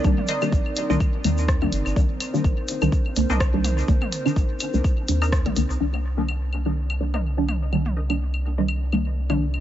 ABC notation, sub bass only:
X:1
M:4/4
L:1/16
Q:"Swing 16ths" 1/4=125
K:Cm
V:1 name="Sub bass" clef=bass
C,, z3 B,,, z2 C,, z2 E,,3 z G,,, G,,, | C,, z3 B,,, z2 C,, z2 C,, C,,4 z | C,, z3 B,,, z2 C,, z2 E,,3 B,,, C,, C,, | C,,16- |
C,,16 |]